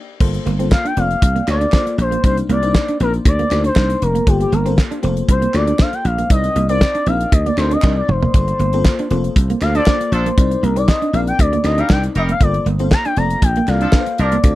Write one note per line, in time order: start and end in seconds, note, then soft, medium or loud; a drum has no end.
0.20 0.38 G1 medium
0.20 0.49 A#3 medium
0.20 0.49 F4 medium
0.20 0.49 A4 medium
0.20 0.49 C5 loud
0.20 kick loud
0.20 crash loud
0.34 muted clean electric guitar stroke soft
0.34 closed hi-hat medium
0.46 0.73 G1 loud
0.46 0.55 A#3 medium
0.46 closed hi-hat medium
0.59 0.88 A#3 medium
0.59 0.67 C4 medium
0.59 0.88 F4 medium
0.59 0.88 A4 medium
0.59 0.88 C5 medium
0.59 closed hi-hat medium
0.72 0.88 F5 loud
0.72 kick loud
0.72 snare loud
0.72 clap medium
0.85 0.93 D4 medium
0.85 1.00 G5 loud
0.85 closed hi-hat medium
0.97 1.14 F1 medium
0.97 1.36 A#3 medium
0.97 1.06 C4 medium
0.97 1.36 F4 medium
0.97 1.36 A4 medium
0.97 1.36 D5 medium
0.97 1.49 F5 loud
0.97 closed hi-hat medium
1.11 closed hi-hat soft
1.22 1.40 C2 loud
1.22 kick loud
1.22 closed hi-hat loud
1.36 1.43 A#3 medium
1.36 closed hi-hat soft
1.47 1.65 D2 medium
1.47 1.67 A#3 medium
1.47 1.67 F4 medium
1.47 1.67 A4 medium
1.47 1.67 D5 medium
1.47 1.96 D5 loud
1.47 muted clean electric guitar stroke soft
1.47 clap medium
1.47 closed hi-hat medium
1.61 1.69 D4 medium
1.61 closed hi-hat soft
1.72 2.12 A#3 medium
1.72 1.81 D4 medium
1.72 2.12 F4 medium
1.72 2.12 A4 medium
1.72 2.12 C5 medium
1.72 kick loud
1.72 snare loud
1.72 clap medium
1.86 muted clean electric guitar stroke soft
1.86 closed hi-hat medium
1.98 2.16 A#1 loud
1.98 2.23 C5 medium
1.98 closed hi-hat medium
2.11 2.19 A#3 medium
2.11 closed hi-hat medium
2.24 2.41 C2 loud
2.24 2.53 A#3 medium
2.24 2.53 D4 medium
2.24 2.53 D#4 medium
2.24 2.53 C5 medium
2.24 2.37 C5 loud
2.24 kick loud
2.24 closed hi-hat medium
2.37 muted clean electric guitar stroke soft
2.37 closed hi-hat medium
2.49 2.76 C2 medium
2.49 2.58 A#3 medium
2.49 2.98 D5 loud
2.49 closed hi-hat medium
2.63 2.91 A#3 medium
2.63 2.70 C4 medium
2.63 2.91 D4 medium
2.63 2.91 D#4 medium
2.63 2.91 C5 medium
2.63 closed hi-hat medium
2.75 kick loud
2.75 snare loud
2.75 clap medium
2.88 2.96 D4 medium
2.88 closed hi-hat medium
3.00 3.18 A#1 medium
3.00 3.39 A#3 medium
3.00 3.09 C4 medium
3.00 3.39 D4 medium
3.00 3.39 D#4 medium
3.00 3.13 A#4 medium
3.00 3.39 C5 medium
3.00 closed hi-hat medium
3.13 closed hi-hat soft
3.25 3.43 D2 loud
3.25 3.62 D5 loud
3.25 kick loud
3.25 closed hi-hat medium
3.39 3.47 A#3 medium
3.39 closed hi-hat soft
3.51 3.69 D2 medium
3.51 3.70 A#3 medium
3.51 3.70 D4 medium
3.51 3.71 D#4 medium
3.51 3.71 C5 medium
3.51 muted clean electric guitar stroke soft
3.51 clap medium
3.51 closed hi-hat medium
3.64 3.72 D4 medium
3.64 4.04 C5 loud
3.64 closed hi-hat medium
3.76 3.94 C2 medium
3.76 4.15 A#3 medium
3.76 3.85 D4 medium
3.76 4.15 D4 medium
3.76 4.15 D#4 medium
3.76 4.15 C5 medium
3.76 kick loud
3.76 snare loud
3.76 clap medium
3.90 muted clean electric guitar stroke soft
3.90 closed hi-hat medium
4.02 4.19 F1 medium
4.02 4.29 A#4 medium
4.02 closed hi-hat medium
4.15 4.23 A#3 medium
4.15 closed hi-hat medium
4.27 4.44 G1 medium
4.27 4.56 A#3 medium
4.27 4.56 F4 medium
4.27 4.40 G4 medium
4.27 4.56 A4 medium
4.27 4.56 C5 medium
4.27 kick loud
4.27 closed hi-hat medium
4.40 4.55 G4 medium
4.40 muted clean electric guitar stroke medium
4.40 closed hi-hat medium
4.52 4.79 G1 loud
4.52 4.61 A#3 medium
4.52 4.78 A#4 medium
4.52 closed hi-hat medium
4.66 4.94 A#3 medium
4.66 4.73 C4 medium
4.66 4.94 F4 medium
4.66 4.95 A4 medium
4.66 4.95 C5 medium
4.66 closed hi-hat medium
4.77 muted clean electric guitar stroke soft
4.77 kick loud
4.77 snare loud
4.77 clap medium
4.91 4.99 D4 medium
4.91 closed hi-hat soft
5.03 5.21 F1 medium
5.03 5.42 A#3 medium
5.03 5.12 C4 medium
5.03 5.42 F4 medium
5.03 5.42 A4 medium
5.03 5.42 C5 medium
5.03 closed hi-hat medium
5.17 closed hi-hat medium
5.29 5.46 C2 loud
5.29 5.57 C5 loud
5.29 kick loud
5.29 closed hi-hat loud
5.42 5.50 A#3 medium
5.42 closed hi-hat medium
5.54 5.72 D2 medium
5.54 5.73 A#3 medium
5.54 5.74 F4 medium
5.54 5.74 A4 medium
5.54 5.74 D5 medium
5.54 5.83 D5 medium
5.54 muted clean electric guitar stroke soft
5.54 clap medium
5.54 closed hi-hat medium
5.67 5.75 D4 medium
5.67 closed hi-hat medium
5.79 6.18 A#3 medium
5.79 5.88 D4 medium
5.79 6.18 F4 medium
5.79 6.19 A4 medium
5.79 6.19 C5 medium
5.79 5.95 F5 loud
5.79 kick loud
5.79 snare loud
5.79 clap medium
5.93 6.07 G5 loud
5.93 muted clean electric guitar stroke soft
5.93 closed hi-hat medium
6.05 6.22 A#1 medium
6.05 6.31 F5 medium
6.05 closed hi-hat medium
6.18 6.26 A#3 medium
6.18 closed hi-hat medium
6.30 6.48 C2 medium
6.30 6.59 C4 medium
6.30 6.59 D#4 medium
6.30 6.59 A#4 medium
6.30 6.59 D5 medium
6.30 6.67 D#5 loud
6.30 kick loud
6.30 closed hi-hat loud
6.44 muted clean electric guitar stroke soft
6.44 closed hi-hat medium
6.56 6.83 C2 loud
6.56 6.65 A#3 medium
6.56 closed hi-hat medium
6.69 6.98 C4 medium
6.69 6.77 C4 medium
6.69 6.98 D#4 medium
6.69 6.98 A#4 medium
6.69 6.98 C5 medium
6.69 7.09 D5 loud
6.69 closed hi-hat medium
6.81 muted clean electric guitar stroke soft
6.81 kick medium
6.81 snare loud
6.81 clap medium
6.95 7.03 D4 medium
6.95 closed hi-hat medium
7.06 7.24 A#1 medium
7.06 7.46 C4 medium
7.06 7.16 C4 medium
7.06 7.46 D#4 medium
7.06 7.46 A#4 medium
7.06 7.46 D#5 medium
7.06 7.34 F5 loud
7.06 closed hi-hat medium
7.20 closed hi-hat medium
7.32 7.50 D2 loud
7.32 7.45 D#5 medium
7.32 kick loud
7.32 closed hi-hat loud
7.46 7.54 A#3 medium
7.46 7.57 D5 medium
7.46 closed hi-hat medium
7.57 7.75 D2 medium
7.57 7.77 C4 medium
7.57 7.77 D#4 medium
7.57 7.77 A#4 medium
7.57 7.74 C5 medium
7.57 7.78 D5 medium
7.57 muted clean electric guitar stroke soft
7.57 clap medium
7.57 closed hi-hat medium
7.71 7.79 D4 medium
7.71 7.96 D#5 medium
7.71 closed hi-hat soft
7.82 8.01 C2 loud
7.82 8.22 C4 medium
7.82 7.92 D4 medium
7.82 8.22 D#4 medium
7.82 8.22 A#4 medium
7.82 8.23 D5 medium
7.82 kick loud
7.82 clap medium
7.82 high tom medium
7.97 8.11 D5 medium
7.97 muted clean electric guitar stroke soft
8.08 8.26 F1 medium
8.08 9.36 C5 loud
8.08 mid tom medium
8.23 8.30 A#3 medium
8.23 floor tom loud
8.34 8.52 G1 medium
8.34 8.63 A#3 medium
8.34 8.63 F4 medium
8.34 8.63 A4 medium
8.34 8.63 C5 medium
8.34 kick loud
8.34 closed hi-hat loud
8.48 muted clean electric guitar stroke medium
8.48 closed hi-hat medium
8.59 8.86 G1 loud
8.59 8.69 A#3 medium
8.59 closed hi-hat medium
8.73 9.01 A#3 medium
8.73 8.81 C4 medium
8.73 9.02 F4 medium
8.73 9.02 A4 medium
8.73 9.02 C5 loud
8.73 closed hi-hat medium
8.85 kick medium
8.85 snare loud
8.85 clap medium
8.99 9.07 D4 medium
8.99 closed hi-hat soft
9.10 9.28 F1 medium
9.10 9.49 A#3 medium
9.10 9.20 C4 medium
9.10 9.50 F4 medium
9.10 9.50 A4 medium
9.10 9.50 C5 medium
9.10 closed hi-hat medium
9.24 closed hi-hat soft
9.36 9.53 C2 medium
9.36 kick loud
9.36 closed hi-hat loud
9.50 9.57 A#3 medium
9.50 closed hi-hat medium
9.61 9.79 D2 medium
9.61 9.81 A#3 medium
9.61 9.81 F4 medium
9.61 9.81 A4 medium
9.61 9.81 C5 medium
9.61 9.74 F5 medium
9.61 muted clean electric guitar stroke soft
9.61 clap medium
9.61 closed hi-hat medium
9.75 9.85 F3 medium
9.75 9.83 D4 medium
9.75 9.85 D4 medium
9.75 9.85 A4 loud
9.75 10.13 D5 loud
9.75 closed hi-hat soft
9.86 10.26 A#3 medium
9.86 9.96 D4 medium
9.86 10.26 F4 medium
9.86 10.26 A4 medium
9.86 10.26 C5 medium
9.86 kick loud
9.86 snare loud
9.86 clap medium
10.00 muted clean electric guitar stroke soft
10.00 closed hi-hat medium
10.12 10.29 A#1 medium
10.12 10.28 F3 medium
10.12 10.28 D4 loud
10.12 10.28 A4 loud
10.12 10.65 C5 medium
10.12 closed hi-hat medium
10.26 10.33 A#3 medium
10.26 closed hi-hat medium
10.38 10.55 C2 loud
10.38 10.66 C4 medium
10.38 10.66 D#4 medium
10.38 10.67 A#4 medium
10.38 10.67 D5 medium
10.38 kick loud
10.38 closed hi-hat medium
10.51 muted clean electric guitar stroke medium
10.51 closed hi-hat medium
10.63 10.90 C2 medium
10.63 10.72 A#3 medium
10.63 10.78 A#4 medium
10.63 closed hi-hat medium
10.76 10.84 C4 medium
10.76 11.05 C4 medium
10.76 11.05 D#4 medium
10.76 11.05 A#4 medium
10.76 10.90 D5 loud
10.76 11.05 D5 medium
10.76 closed hi-hat medium
10.88 11.14 D#5 loud
10.88 muted clean electric guitar stroke soft
10.88 kick loud
10.88 snare loud
10.88 clap medium
11.02 11.09 D4 medium
11.02 closed hi-hat soft
11.13 11.31 A#1 medium
11.13 11.53 C4 medium
11.13 11.22 C4 medium
11.13 11.53 D#4 medium
11.13 11.53 A#4 medium
11.13 11.53 D5 medium
11.13 11.20 F5 loud
11.13 closed hi-hat medium
11.27 11.41 G5 loud
11.27 closed hi-hat medium
11.39 11.57 D2 loud
11.39 11.65 D5 loud
11.39 kick loud
11.39 closed hi-hat loud
11.53 11.60 A#3 medium
11.53 closed hi-hat medium
11.64 11.82 D2 medium
11.64 11.84 C4 medium
11.64 11.84 D#4 medium
11.64 11.84 A#4 medium
11.64 11.84 D5 medium
11.64 11.81 D#5 medium
11.64 muted clean electric guitar stroke soft
11.64 clap medium
11.64 closed hi-hat medium
11.78 11.88 G3 medium
11.78 11.86 D4 medium
11.78 11.88 D#4 medium
11.78 11.88 A#4 loud
11.78 11.90 F5 loud
11.78 closed hi-hat medium
11.89 12.07 C2 medium
11.89 12.29 C4 medium
11.89 11.99 D4 medium
11.89 12.29 D#4 medium
11.89 12.29 A#4 medium
11.89 12.29 D5 medium
11.89 12.03 G5 loud
11.89 kick loud
11.89 snare loud
11.89 clap medium
12.03 muted clean electric guitar stroke soft
12.03 closed hi-hat medium
12.15 12.33 F1 medium
12.15 12.31 G3 loud
12.15 12.31 D#4 medium
12.15 12.31 A#4 loud
12.15 12.22 D#5 medium
12.15 closed hi-hat medium
12.29 12.37 A#3 medium
12.29 12.44 F5 loud
12.29 closed hi-hat medium
12.40 12.58 G1 loud
12.40 12.69 A#3 medium
12.40 12.70 F4 medium
12.40 12.70 A4 medium
12.40 12.70 C5 medium
12.40 12.67 D5 medium
12.40 kick loud
12.40 closed hi-hat medium
12.54 muted clean electric guitar stroke medium
12.54 closed hi-hat medium
12.66 12.93 G1 loud
12.66 12.75 A#3 medium
12.66 closed hi-hat medium
12.79 13.08 A#3 medium
12.79 12.88 C4 medium
12.79 13.08 F4 medium
12.79 13.08 A4 medium
12.79 13.08 C5 loud
12.79 closed hi-hat medium
12.91 13.06 A#5 loud
12.91 kick loud
12.91 snare loud
12.91 clap loud
13.05 13.13 D4 medium
13.05 13.19 G5 loud
13.05 closed hi-hat medium
13.16 13.34 F1 medium
13.16 13.23 A3 medium
13.16 13.26 C4 medium
13.16 13.56 F4 medium
13.16 13.56 A4 medium
13.16 13.56 D5 medium
13.16 13.45 A#5 loud
13.16 closed hi-hat medium
13.23 13.59 A#3 medium
13.30 closed hi-hat medium
13.42 13.60 A#1 loud
13.42 13.70 G5 loud
13.42 kick loud
13.42 closed hi-hat loud
13.56 13.64 A#3 medium
13.56 closed hi-hat medium
13.68 13.85 C2 medium
13.68 13.87 A#3 medium
13.68 13.87 F4 medium
13.68 13.87 A4 medium
13.68 13.88 D5 medium
13.68 14.19 F5 loud
13.68 muted clean electric guitar stroke soft
13.68 clap medium
13.68 closed hi-hat medium
13.81 13.91 F3 medium
13.81 13.92 D4 medium
13.81 13.89 D4 medium
13.81 13.92 A4 loud
13.81 closed hi-hat soft
13.92 14.32 A#3 medium
13.92 14.02 D4 medium
13.92 14.32 F4 medium
13.92 14.32 A4 medium
13.92 14.00 B4 medium
13.92 kick loud
13.92 snare loud
13.92 clap medium
14.00 14.36 C5 medium
14.06 muted clean electric guitar stroke soft
14.06 closed hi-hat medium
14.18 14.36 C2 medium
14.18 14.35 F3 medium
14.18 14.35 D4 loud
14.18 14.35 A#4 loud
14.18 14.55 D5 medium
14.18 closed hi-hat medium
14.32 14.40 A#3 medium
14.32 closed hi-hat medium
14.44 14.55 D2 medium
14.44 14.55 C4 medium
14.44 14.55 F4 medium
14.44 14.55 A4 medium
14.44 14.55 D5 medium
14.44 kick loud
14.44 closed hi-hat loud